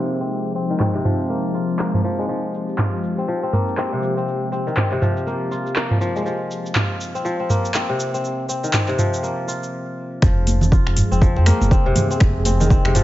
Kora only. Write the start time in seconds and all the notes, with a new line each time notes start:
Already playing: C3 G#3 A#3 C4 F4
0.20 C4
0.55 C4
0.70 D#3
0.80 C4
0.95 C3
1.05 F3
1.29 A#3
1.54 F4
1.79 A#3
1.94 F3
2.04 F3
2.19 G#3
2.29 F3
2.78 F4
3.18 C4
3.28 F3
3.43 C4
3.53 A#3
3.78 C4
3.93 C3
4.17 C4
4.52 C4
4.67 D#3
4.77 C4
4.92 C3
5.02 F3
5.27 A#3
5.51 F4
5.76 A#3
5.91 F3
6.01 F3
6.16 G#3
6.25 F3
6.75 F4
7.15 C4
7.25 F3
7.40 C4
7.50 A#3
7.74 C4
7.89 C3
8.14 C4
8.49 C4
8.64 D#3
8.73 C4
8.88 C3
8.98 F3
9.23 A#3
9.48 F4
10.22 F3
10.72 F4
11.11 C4
11.21 F3
11.36 C4
11.46 A#3
11.71 C4
11.86 C3
12.11 C4
12.46 C4
12.60 D#3
12.70 C4
12.85 C3
12.95 F3